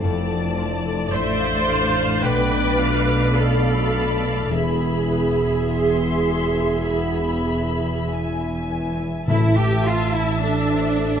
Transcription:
0.00 2.27 F2 soft
0.00 4.46 A3 medium
0.00 2.27 C4 soft
0.00 1.09 E4 soft
0.00 0.84 A4 soft
0.00 2.27 C5 soft
0.04 1.13 F1 medium
0.04 1.13 F2 soft
0.04 1.11 D5 soft
0.04 1.11 A5 soft
0.30 1.94 D4 soft
0.58 2.77 F4 soft
0.85 1.66 A4 soft
1.06 1.13 D5 soft
1.12 2.23 A1 medium
1.12 2.22 A2 soft
1.12 4.51 D4 medium
1.12 2.23 C5 medium
1.12 3.33 D5 soft
1.12 2.22 D5 medium
1.12 1.66 E5 medium
1.12 2.23 C6 soft
1.40 3.61 F5 soft
1.67 3.05 A4 soft
1.67 2.23 F5 medium
1.95 2.50 D4 soft
2.22 4.51 B1 medium
2.22 4.51 B2 medium
2.22 4.56 B2 medium
2.22 3.35 B4 medium
2.22 3.34 D5 soft
2.22 2.78 G5 medium
2.22 3.35 D6 soft
2.51 4.19 D4 soft
2.78 4.55 F4 soft
2.78 3.34 F5 soft
3.06 3.90 A4 soft
3.34 4.51 A4 medium
3.34 4.55 D5 soft
3.34 4.49 D5 soft
3.34 4.49 F5 soft
3.34 4.51 B5 soft
3.62 4.55 F5 soft
3.91 4.55 A4 soft
4.21 4.55 D4 soft
4.50 9.04 E1 soft
4.50 9.04 E2 soft
4.50 8.40 E3 soft
4.50 8.91 B3 medium
4.50 8.92 E4 soft
4.50 8.09 G#4 medium
4.50 9.08 E5 soft
4.50 5.57 B5 soft
4.81 5.40 E4 soft
5.11 6.30 B4 soft
5.41 6.59 E4 soft
5.71 8.07 E5 soft
5.71 6.86 C6 medium
6.00 8.39 B5 soft
6.31 7.49 B4 soft
6.60 7.19 E4 soft
6.90 9.33 B3 soft
6.90 8.10 B5 soft
7.20 7.79 E4 soft
7.50 8.69 B4 soft
7.80 8.99 E4 soft
8.09 11.20 E5 soft
8.09 9.29 G#5 soft
8.40 9.33 B5 soft
8.70 9.33 B4 soft
9.00 10.13 E4 soft
9.28 11.20 A1 medium
9.28 10.95 A2 medium
9.28 11.20 A2 medium
9.28 9.55 E4 medium
9.28 11.20 E5 medium
9.28 11.20 A5 medium
9.56 11.20 E3 soft
9.56 9.85 G4 medium
9.84 11.20 C4 soft
9.84 10.13 F4 medium
10.13 10.42 E4 medium
10.13 11.20 E4 soft
10.41 11.20 D4 medium
10.41 10.98 A4 soft
10.72 11.20 C5 soft
11.00 11.20 A4 soft

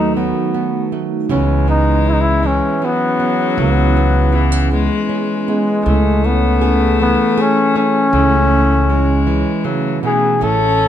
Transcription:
0.00 0.31 D#2 medium
0.00 1.26 D#3 medium
0.00 1.30 F#3 medium
0.00 0.53 A3 medium
0.00 0.91 A3 medium
0.00 0.92 A3 loud
0.00 0.54 B3 soft
0.00 0.13 D#4 medium
0.00 0.92 D#4 medium
0.00 0.92 F#4 medium
0.16 1.26 F#3 medium
0.16 0.88 B3 medium
0.54 0.91 A3 soft
0.54 1.31 B3 soft
0.92 1.30 A3 soft
0.92 1.38 A3 medium
0.92 1.38 D#4 medium
0.92 1.38 F#4 medium
1.29 2.59 C#2 medium
1.29 2.44 C#3 medium
1.29 2.42 E3 medium
1.29 2.78 G#3 medium
1.29 1.67 B3 medium
1.29 1.66 C#4 medium
1.29 2.05 C#4 medium
1.29 3.57 E4 medium
1.68 3.18 B3 medium
1.68 2.06 C#4 soft
1.68 2.10 D#4 medium
2.05 2.81 B3 medium
2.05 2.81 C#4 medium
2.05 3.21 C#4 medium
2.05 2.15 E4 loud
2.05 3.21 G#4 medium
2.14 2.22 D#4 medium
2.21 2.48 E4 medium
2.43 4.71 E3 medium
2.43 2.87 C#4 medium
2.82 4.37 F#3 loud
2.82 3.20 B3 medium
2.82 3.60 B3 medium
2.82 4.00 C#4 medium
3.20 3.53 B3 medium
3.20 3.95 C#4 medium
3.20 4.34 G#4 medium
3.57 4.87 C#2 medium
3.57 4.72 C#3 medium
3.57 5.07 B3 medium
3.57 5.85 E4 medium
3.97 4.31 B3 medium
3.97 4.33 C#4 medium
4.32 4.71 E3 medium
4.32 4.52 B3 medium
4.32 5.09 B3 medium
4.32 5.48 C#4 medium
4.32 5.48 G#4 medium
4.52 5.08 C#4 soft
4.71 6.99 E3 medium
4.71 5.82 G#3 loud
5.09 5.47 B3 medium
5.09 6.24 C#4 soft
5.48 6.27 G#3 medium
5.48 5.81 B3 medium
5.48 5.94 B3 medium
5.48 5.94 C#4 medium
5.48 5.94 G#4 medium
5.86 7.14 C#2 medium
5.86 7.00 C#3 medium
5.86 8.10 A3 loud
5.86 8.12 E4 medium
6.24 7.01 B3 medium
6.24 6.61 C#4 medium
6.24 7.75 C#4 medium
6.61 7.37 A3 medium
6.61 7.75 C#4 medium
6.61 7.36 G#4 medium
6.61 7.75 G#4 medium
7.00 9.26 E3 medium
7.00 7.43 B3 medium
7.38 7.74 A3 medium
7.38 7.77 C#4 medium
7.38 8.09 G#4 medium
7.76 8.89 A3 medium
7.76 8.90 C#4 medium
7.76 8.50 C#4 medium
7.76 9.63 C#4 loud
7.76 8.90 G#4 medium
8.13 9.42 C#2 medium
8.13 9.27 C#3 medium
8.13 8.91 A3 medium
8.13 10.41 E4 medium
8.51 8.89 C#4 soft
8.90 9.67 G#3 medium
8.90 10.37 C#4 medium
8.90 10.03 C#4 medium
8.90 10.04 G#4 medium
9.27 10.88 E3 medium
9.64 10.03 C#3 medium
9.64 10.03 F#3 medium
9.64 10.03 A3 soft
10.03 10.41 B2 medium
10.03 10.39 E3 medium
10.03 10.49 A3 medium
10.03 10.50 C#4 medium
10.03 10.50 G#4 medium
10.03 10.40 G#4 medium
10.41 10.88 A1 medium
10.41 10.88 A2 medium
10.41 10.88 C#4 medium
10.41 10.88 E4 medium
10.41 10.80 A4 medium
10.41 10.88 A4 loud
10.79 10.88 A3 medium
10.79 10.88 C#4 medium
10.79 10.88 A4 medium

